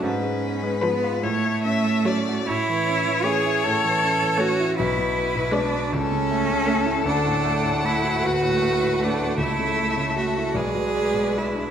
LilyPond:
<<
  \new Staff \with { instrumentName = "Violin" } { \time 6/8 \key a \major \tempo 4. = 52 r4 ces''8 r4 cis''8 | r4 cis''8 r4 cis''8 | r4 d''8 r4 e''8 | fis''2. |
e''4. d''4. | }
  \new Staff \with { instrumentName = "Violin" } { \time 6/8 \key a \major ces''4. cis''8 e''8 d''8 | cis''2. | b'4. a'4.~ | a'4. b'4. |
a'4. b'4. | }
  \new Staff \with { instrumentName = "Cello" } { \time 6/8 \key a \major cis'4 ces'8 a4. | e'4 gis'8 a'4 fis'8 | e'4 d'8 cis'4. | d'4 e'8 fis'4 d'8 |
e'4 fis'8 gis'4 e'8 | }
  \new Staff \with { instrumentName = "Grand piano" } { \clef bass \time 6/8 \key a \major aes,16 aes16 ces'16 aes16 ces'16 f'16 a,16 a16 cis'16 a16 cis'16 fis'16 | a,16 e16 cis'16 e16 cis'16 e'16 a,16 e16 cis'16 e16 cis'16 e'16 | b,,16 b,16 b16 b,16 b16 d'16 cis,16 cis16 a16 cis16 a16 e'16 | d,16 a,16 a16 a,16 a16 fis'16 d,16 a,16 a16 a,16 a16 fis'16 |
cis,16 cis16 a16 cis16 a16 e'16 b,,16 b,16 gis16 b,16 gis16 d'16 | }
  \new Staff \with { instrumentName = "Viola" } { \clef bass \time 6/8 \key a \major r4 f8 r4 fis8 | r4 a8 r4 a8 | r4 gis8 r4 a8 | a2.~ |
a4. gis4. | }
>>